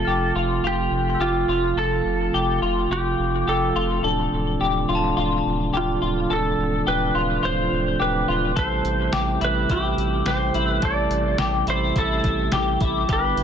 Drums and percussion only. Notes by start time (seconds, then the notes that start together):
8.57 kick, closed hi-hat
8.85 closed hi-hat
9.13 snare, closed hi-hat
9.41 closed hi-hat
9.70 kick, closed hi-hat
9.98 closed hi-hat
10.26 snare, closed hi-hat
10.54 closed hi-hat
10.82 kick, closed hi-hat
11.11 closed hi-hat
11.38 snare, closed hi-hat
11.67 closed hi-hat
11.96 kick, closed hi-hat
12.24 kick, closed hi-hat
12.52 snare, closed hi-hat
12.80 kick, closed hi-hat
13.09 kick, closed hi-hat
13.37 closed hi-hat